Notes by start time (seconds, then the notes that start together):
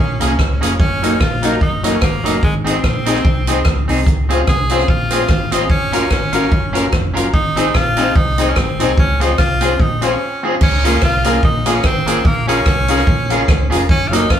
Already playing: C#4
0.00 A#1
0.20 C2 A#3 C#4 F4 G#4 A#4, closed hi-hat
0.39 C#2, kick, cross-stick
0.61 F1 A#3 C#4 F4 G#4 A#4, closed hi-hat
0.80 F#1 C#4, kick
1.02 F#3 A#3 C#4 D#4 F#4 A#4, closed hi-hat
1.21 A#1 F4, kick, cross-stick
1.43 F#3 A#3 C#4 D#4 F#4 A#4, closed hi-hat
1.61 F#1 D#4 F#4 A#4, kick
1.84 F#3 A#3 C#4 D#4 F#4 A#4, closed hi-hat
1.95 C#4
2.02 G#1 A#3, kick, cross-stick
2.24 F#1 F#3 A#3 C#4 D#4 F#4 A#4, closed hi-hat
2.43 G#1 G#3, kick
2.64 C4 D#4 G#4 C5, closed hi-hat
2.84 A#1, kick, cross-stick
3.06 C4 D#4 G#4 C5, closed hi-hat
3.15 cross-stick
3.25 C2, muted clean electric guitar stroke, kick
3.47 C4 D#4 G#4 C5, closed hi-hat
3.65 C#2, kick, cross-stick
3.88 C2 C4 D#4 G#4 C5, open hi-hat
4.07 C#2, kick, hi-hat pedal
4.29 C4 C#4 F4 G#4 C5, closed hi-hat
4.47 C2 G#4, kick, cross-stick
4.70 C4 C#4 F4 G#4 C5, closed hi-hat
4.79 cross-stick
4.88 A#1 F4 G#4 C5, kick
5.11 C4 C#4 F4 G#4 C5, cross-stick, closed hi-hat
5.28 G#1, kick, cross-stick
5.52 C4 C#4 D#4 F4 G#4 C5, closed hi-hat
5.70 F#1 C#4, kick
5.92 C#4 F4 F#4 A#4, closed hi-hat
6.10 G#1 C#4, kick, cross-stick
6.33 C#4 F4 F#4 A#4, closed hi-hat
6.49 F#1, muted clean electric guitar stroke, kick
6.73 C#4 F4 F#4 A#4, cross-stick, closed hi-hat
6.92 F1, kick, cross-stick
7.14 F#1 C#4 F4 F#4 A#4, closed hi-hat
7.34 G#1 D#4, kick
7.56 C4 D#4 G#4 C5, closed hi-hat
7.74 A#1 F4, kick, cross-stick
7.97 C4 D#4 G#4 C5, closed hi-hat
8.16 C2 D#4 G#4 C5, kick
8.38 C4 D#4 G#4 C5, closed hi-hat
8.49 C#4
8.56 G#1 C4, kick, cross-stick
8.79 C2 C4 D#4 G#4 C5, closed hi-hat
8.98 C#2 C#4, kick
9.20 C4 C#4 D#4 F4 G#4 C5, closed hi-hat
9.38 C2 F4, kick, cross-stick
9.61 C4 C#4 F4 G#4 C5, closed hi-hat
9.79 A#1 D#4, muted clean electric guitar stroke, kick
10.01 C4 C#4 F4 G#4 C5, closed hi-hat
10.43 C4 C#4 F4 G#4 C5
10.61 C#2 C#4, kick, crash
10.84 A#3 C#4 F4 G#4 A#4, closed hi-hat
11.02 C2 F4, kick, cross-stick
11.24 A#3 C#4 F4 G#4 A#4, closed hi-hat
11.43 A#1 D#4 G#4 A#4, kick
11.65 A#3 C#4 F4 G#4 A#4, cross-stick, closed hi-hat
11.75 C#4
11.84 G#1 C4, kick, cross-stick
12.06 A#3 C#4 F4 G#4 A#4, closed hi-hat
12.25 A#1 A#3, kick
12.47 C#4 F4 G#4 A#4, closed hi-hat
12.66 C2, kick, cross-stick
12.88 C#4 F4 G#4 A#4, closed hi-hat
12.98 cross-stick
13.07 A#1, kick
13.30 C#4 F4 G#4 A#4, closed hi-hat
13.48 C#2, kick, cross-stick
13.70 F1 C#4 F4 G#4 A#4, closed hi-hat
13.89 F#1 C#4, kick
14.08 F#3 F4
14.12 A#3 C#4 D#4 F#4 A#4, closed hi-hat
14.30 G#1 F4, kick, cross-stick